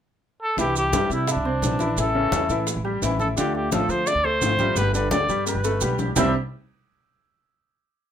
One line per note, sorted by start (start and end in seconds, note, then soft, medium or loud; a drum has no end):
0.43 0.58 A4 loud
0.56 0.91 C2 medium
0.56 0.91 C3 medium
0.56 0.91 E3 medium
0.56 0.87 E3 medium
0.56 0.91 G3 medium
0.56 0.92 D4 medium
0.56 0.87 E4 medium
0.56 0.93 E4 medium
0.56 0.75 G4 loud
0.56 high bongo medium
0.56 high conga soft
0.56 maracas medium
0.75 1.09 G4 loud
0.75 high conga soft
0.75 maracas medium
0.92 1.09 G2 medium
0.92 1.09 C3 medium
0.92 1.09 E3 medium
0.92 1.10 G3 medium
0.92 1.22 G3 medium
0.92 1.10 D4 medium
0.92 1.09 E4 medium
0.92 1.22 G4 medium
0.92 high bongo medium
0.92 high conga medium
0.92 maracas medium
1.10 1.35 C3 medium
1.10 1.27 G3 soft
1.10 1.27 D4 soft
1.10 1.27 E4 soft
1.10 1.33 E4 medium
1.10 high bongo soft
1.10 high conga soft
1.10 maracas soft
1.27 2.00 D4 medium
1.27 1.42 E4 medium
1.27 1.42 E5 medium
1.27 muted nylon-string guitar stroke medium
1.27 high bongo medium
1.27 high conga soft
1.27 maracas medium
1.35 1.61 C2 medium
1.45 1.74 C4 medium
1.45 1.74 C5 medium
1.45 high bongo soft
1.45 high conga soft
1.62 1.96 A#1 medium
1.62 1.80 C3 medium
1.62 1.80 E3 medium
1.62 1.81 G3 medium
1.62 1.80 D4 medium
1.62 1.79 E4 medium
1.62 high bongo soft
1.62 low bongo medium
1.62 high conga medium
1.62 maracas medium
1.79 2.09 E3 medium
1.79 1.98 G3 soft
1.79 1.98 D4 soft
1.79 2.09 E4 medium
1.79 1.97 E4 soft
1.79 high bongo soft
1.79 high conga medium
1.79 maracas soft
1.97 2.30 A1 loud
1.97 2.32 E3 medium
1.97 2.33 G3 medium
1.97 2.33 C#4 medium
1.97 2.33 E4 medium
1.97 high bongo medium
1.97 high conga soft
1.97 maracas medium
2.01 2.65 A4 medium
2.15 2.44 C#3 medium
2.15 2.44 C#4 medium
2.15 high conga soft
2.32 2.48 E2 medium
2.32 2.50 E3 medium
2.32 2.50 G3 medium
2.32 2.51 C#4 medium
2.32 2.50 E4 medium
2.32 high bongo medium
2.32 high conga medium
2.32 maracas medium
2.49 2.75 A2 medium
2.49 2.79 E3 medium
2.49 2.68 G3 soft
2.49 2.67 C#4 soft
2.49 2.79 E4 medium
2.49 2.67 E4 soft
2.49 high bongo soft
2.49 high conga soft
2.49 maracas soft
2.67 muted nylon-string guitar stroke medium
2.67 high bongo medium
2.67 high conga soft
2.67 maracas medium
2.76 3.01 A1 medium
2.85 2.99 G3 medium
2.85 2.99 G4 medium
2.85 high bongo soft
2.85 high conga soft
3.02 3.35 A1 medium
3.02 3.19 E3 medium
3.02 3.31 E3 medium
3.02 3.20 G3 medium
3.02 3.20 C#4 medium
3.02 3.31 E4 medium
3.02 3.19 E4 medium
3.02 high bongo soft
3.02 low bongo medium
3.02 high conga soft
3.02 maracas medium
3.19 3.37 G3 soft
3.19 3.38 C#4 soft
3.19 3.37 E4 soft
3.19 3.28 A4 medium
3.19 high bongo soft
3.19 high conga medium
3.19 maracas soft
3.37 3.70 D2 loud
3.37 3.71 D3 medium
3.37 3.66 D3 medium
3.37 3.72 A3 medium
3.37 3.72 C4 medium
3.37 3.66 D4 medium
3.37 3.72 F4 medium
3.37 3.54 G4 medium
3.37 high bongo medium
3.37 maracas medium
3.55 3.71 G4 medium
3.55 high conga soft
3.72 3.88 A1 medium
3.72 3.89 D3 medium
3.72 4.01 F3 medium
3.72 3.89 A3 medium
3.72 3.88 C4 medium
3.72 4.01 F4 medium
3.72 3.87 F4 medium
3.72 3.92 A4 medium
3.72 high bongo medium
3.72 high conga medium
3.72 maracas medium
3.88 4.14 D3 medium
3.88 4.06 A3 soft
3.88 4.06 C4 soft
3.88 4.06 F4 soft
3.88 4.08 C5 loud
3.88 high bongo soft
3.88 high conga soft
3.88 maracas soft
4.07 4.21 D4 medium
4.07 4.26 D5 loud
4.07 4.22 D5 medium
4.07 muted nylon-string guitar stroke medium
4.07 high bongo medium
4.07 high conga soft
4.07 maracas medium
4.15 4.40 D2 medium
4.24 4.53 A3 medium
4.24 4.53 A4 medium
4.24 4.79 C5 loud
4.24 high bongo soft
4.24 high conga soft
4.42 4.75 G#1 medium
4.42 4.59 D3 medium
4.42 4.59 A3 medium
4.42 4.59 C4 medium
4.42 4.58 F4 medium
4.42 high bongo soft
4.42 low bongo medium
4.42 high conga medium
4.42 maracas medium
4.59 4.88 G3 medium
4.59 4.77 A3 soft
4.59 4.77 C4 soft
4.59 4.76 F4 soft
4.59 4.88 G4 medium
4.59 high bongo soft
4.59 high conga medium
4.59 maracas soft
4.75 5.09 G1 loud
4.75 5.10 D3 medium
4.75 5.11 G3 medium
4.75 5.12 B3 medium
4.75 5.12 G4 medium
4.75 4.94 B4 medium
4.75 high bongo medium
4.75 high conga soft
4.75 maracas medium
4.94 5.23 D3 medium
4.94 5.23 D4 medium
4.94 5.11 B4 medium
4.94 high conga soft
4.94 maracas medium
5.11 5.27 D2 medium
5.11 5.29 D3 medium
5.11 5.29 G3 medium
5.11 5.29 B3 medium
5.11 5.28 G4 medium
5.11 5.44 D5 medium
5.11 high bongo medium
5.11 high conga loud
5.11 maracas medium
5.28 5.54 G2 medium
5.28 5.58 G3 medium
5.28 5.46 B3 soft
5.28 5.46 G4 soft
5.28 5.58 G4 medium
5.28 high bongo soft
5.28 high conga soft
5.28 maracas soft
5.46 5.96 B4 medium
5.46 muted nylon-string guitar stroke medium
5.46 high bongo medium
5.46 high conga soft
5.46 maracas medium
5.55 5.80 G1 medium
5.64 5.79 A3 medium
5.64 5.79 A4 medium
5.64 high bongo medium
5.64 high conga soft
5.64 maracas medium
5.81 6.15 B1 medium
5.81 5.99 D3 medium
5.81 6.10 G3 medium
5.81 5.99 G3 medium
5.81 5.99 B3 medium
5.81 6.10 G4 medium
5.81 5.98 G4 medium
5.81 low bongo medium
5.81 high conga soft
5.81 maracas medium
5.99 6.17 G3 soft
5.99 6.17 B3 soft
5.99 6.16 G4 soft
5.99 low bongo medium
5.99 high conga medium
5.99 maracas soft
6.16 6.33 C2 medium
6.16 6.32 C3 medium
6.16 6.31 C3 medium
6.16 6.31 E3 medium
6.16 6.33 G3 medium
6.16 6.32 G3 medium
6.16 6.33 C4 medium
6.16 6.33 D4 medium
6.16 6.32 D4 medium
6.16 6.33 E4 medium
6.16 6.32 E4 medium
6.16 6.33 G4 medium
6.16 6.33 E5 medium
6.16 low bongo loud
6.16 low conga loud
6.16 maracas loud